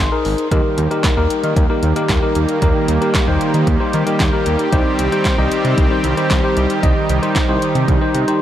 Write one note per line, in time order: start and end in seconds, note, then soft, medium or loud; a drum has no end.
0.00 0.48 C6 medium
0.12 0.46 D#4 medium
0.12 0.46 G#4 medium
0.12 0.46 A#4 loud
0.25 0.35 G#1 loud
0.25 open hi-hat medium
0.38 closed hi-hat medium
0.51 0.62 D#2 loud
0.51 4.69 D#3 medium
0.51 8.42 G3 medium
0.51 4.69 A#3 medium
0.51 0.86 D#4 medium
0.51 8.42 G4 medium
0.51 0.86 G4 medium
0.51 0.86 A#4 medium
0.51 kick loud
0.51 closed hi-hat medium
0.78 0.88 D#2 loud
0.78 closed hi-hat medium
0.91 1.14 D#4 medium
0.91 1.14 G4 medium
0.91 1.14 A#4 loud
0.91 closed hi-hat medium
1.04 kick loud
1.04 snare loud
1.04 clap medium
1.04 closed hi-hat medium
1.17 1.28 D#2 loud
1.17 1.63 D#4 medium
1.17 1.63 G4 medium
1.17 1.63 A#4 loud
1.30 closed hi-hat medium
1.44 1.54 D#3 medium
1.44 closed hi-hat medium
1.56 1.67 D#2 loud
1.56 kick loud
1.56 closed hi-hat medium
1.70 1.93 D#4 medium
1.70 1.93 G4 medium
1.70 1.93 A#4 loud
1.83 1.93 D#2 loud
1.83 closed hi-hat medium
1.96 2.19 D#4 medium
1.96 2.19 G4 medium
1.96 2.19 A#4 loud
1.96 closed hi-hat medium
2.09 2.20 D#2 loud
2.09 kick loud
2.09 snare loud
2.09 clap medium
2.09 closed hi-hat medium
2.22 2.57 D#4 medium
2.22 2.57 G4 medium
2.22 2.57 A#4 medium
2.35 2.46 D#2 loud
2.35 closed hi-hat medium
2.49 closed hi-hat medium
2.62 2.72 D#2 loud
2.62 2.96 D#4 medium
2.62 2.96 G4 medium
2.62 2.96 A#4 loud
2.62 kick loud
2.62 closed hi-hat medium
2.88 2.99 D#2 loud
2.88 closed hi-hat medium
3.01 3.24 D#4 medium
3.01 3.24 G4 medium
3.01 3.24 A#4 loud
3.01 closed hi-hat medium
3.14 kick loud
3.14 snare loud
3.14 clap medium
3.14 closed hi-hat medium
3.28 3.38 D#2 loud
3.28 3.74 D#4 medium
3.28 3.74 G4 medium
3.28 3.74 C5 loud
3.41 closed hi-hat medium
3.54 3.64 D#3 loud
3.54 closed hi-hat medium
3.67 3.77 D#2 loud
3.67 kick loud
3.67 closed hi-hat medium
3.80 4.03 D#4 medium
3.80 4.03 G4 medium
3.80 4.03 C5 loud
3.93 4.04 D#3 loud
3.93 closed hi-hat medium
4.07 4.30 D#4 medium
4.07 4.30 G4 medium
4.07 4.30 A#4 medium
4.07 closed hi-hat medium
4.20 4.30 D#2 loud
4.20 kick loud
4.20 snare loud
4.20 clap medium
4.20 closed hi-hat medium
4.33 4.68 D#4 medium
4.33 4.68 G4 medium
4.33 4.68 A#4 loud
4.46 4.57 D#2 loud
4.46 closed hi-hat medium
4.59 closed hi-hat medium
4.72 4.83 C2 loud
4.72 8.42 D#3 medium
4.72 6.81 C4 medium
4.72 5.07 D#4 medium
4.72 5.07 G4 medium
4.72 5.07 C5 medium
4.72 kick loud
4.72 closed hi-hat medium
4.99 5.09 C2 loud
4.99 closed hi-hat medium
5.12 5.35 D#4 medium
5.12 5.35 G4 medium
5.12 5.35 C5 loud
5.12 closed hi-hat medium
5.25 kick loud
5.25 snare loud
5.25 clap medium
5.25 closed hi-hat medium
5.38 5.49 C2 loud
5.38 5.84 D#4 medium
5.38 5.84 G4 medium
5.38 5.84 D#5 loud
5.52 closed hi-hat medium
5.65 5.75 C3 loud
5.65 closed hi-hat medium
5.78 5.88 C2 loud
5.78 kick loud
5.78 closed hi-hat medium
5.91 6.14 D#4 medium
5.91 6.14 G4 medium
5.91 6.14 C5 loud
6.04 6.14 C2 loud
6.04 closed hi-hat medium
6.17 6.40 D#4 medium
6.17 6.40 G4 medium
6.17 6.40 C5 loud
6.17 closed hi-hat medium
6.30 6.41 C2 loud
6.30 kick loud
6.30 snare loud
6.30 clap medium
6.30 closed hi-hat medium
6.44 6.78 D#4 medium
6.44 6.78 G4 medium
6.44 6.78 C5 medium
6.57 6.67 C2 loud
6.57 closed hi-hat medium
6.70 closed hi-hat medium
6.83 6.93 C2 loud
6.83 7.17 D#4 medium
6.83 8.42 D#4 medium
6.83 7.18 G4 medium
6.83 7.18 D#5 loud
6.83 kick loud
6.83 closed hi-hat medium
7.09 7.20 C2 loud
7.09 closed hi-hat medium
7.22 7.45 D#4 medium
7.22 7.45 G4 medium
7.22 7.45 C5 loud
7.22 closed hi-hat medium
7.36 kick loud
7.36 snare loud
7.36 clap medium
7.36 closed hi-hat medium
7.49 7.59 C2 medium
7.49 7.95 D#4 medium
7.49 7.95 G4 medium
7.49 7.95 C5 loud
7.62 closed hi-hat medium
7.75 7.85 C3 loud
7.75 closed hi-hat medium
7.88 7.99 C2 loud
7.88 kick loud
7.88 closed hi-hat medium
8.01 8.24 D#4 medium
8.01 8.24 G4 medium
8.01 8.24 C5 loud
8.15 8.25 C3 loud
8.15 closed hi-hat medium
8.28 8.42 D#4 medium
8.28 8.42 G4 medium
8.28 8.42 C5 medium
8.28 closed hi-hat medium